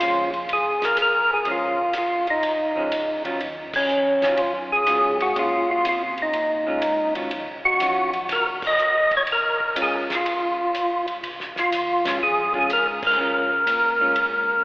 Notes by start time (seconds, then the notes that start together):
Already playing: F4
0.00 F2 F3 G#3 C#4, hi-hat pedal, ride
0.34 ride
0.49 C#2, ride
0.53 G#4
0.82 A#4, snare, ride
0.97 C2, hi-hat pedal, ride
1.02 A#4
1.33 G#4
1.45 A#1 F3 G#3 C#4, ride
1.51 F4
1.93 G#1, hi-hat pedal, ride
1.98 F4
2.27 D#4, ride
2.43 C2, ride
2.75 F3 G#3 C#4
2.91 C#2, hi-hat pedal, ride
3.24 D#3 F#3 C#4 F4, ride
3.40 D#2, ride
3.73 C#4, kick, crash
3.89 F2, hi-hat pedal
4.22 F2 D#3 F#3 C#4 F4, snare, ride
4.37 F#2 F4, ride
4.72 G#4
4.87 G#2 D#3 F#3 C#4 F4, hi-hat pedal, ride
5.20 F#4, ride
5.36 A#2 G#3 C#4 F4, ride
5.71 F4
5.84 C3, hi-hat pedal, ride
5.89 F4
6.18 ride
6.22 D#4
6.32 A#2, ride
6.67 G#3 C#4 F4
6.82 G#2, hi-hat pedal, ride
7.15 D#3 F#3 C#4 F4, ride
7.31 D#2, ride
7.47 C#2
7.63 A#1 F#4
7.79 F2 D#3 F#3 C#4 F4, hi-hat pedal, ride
8.13 ride
8.29 C#2 A#4, snare, ride
8.62 kick, crash
8.67 D#5
8.78 C2, hi-hat pedal
8.94 A#1
9.10 F#1, kick, ride
9.17 C#5
9.26 A#1, ride
9.32 A#4
9.60 kick
9.75 F#1 G#3 C#4 F4, hi-hat pedal, ride
9.82 G#4
10.10 snare, ride
10.15 F4
10.24 G#1, ride
10.73 C2, hi-hat pedal, ride
11.08 ride
11.23 C#2, ride
11.40 snare
11.56 C#2 F4, snare
11.71 D#2, hi-hat pedal, ride
12.05 G#3 C#4 F4, snare, ride
12.21 F2 G#4
12.54 G#3 C#4 F4, kick
12.59 G#4
12.69 G#2, hi-hat pedal, ride
12.73 A#4
13.03 kick, crash
13.07 A#4
13.18 C#3 G#3 C#4 F4
13.66 A#2, hi-hat pedal, ride
14.00 G#3 C#4 F4
14.16 G#2, ride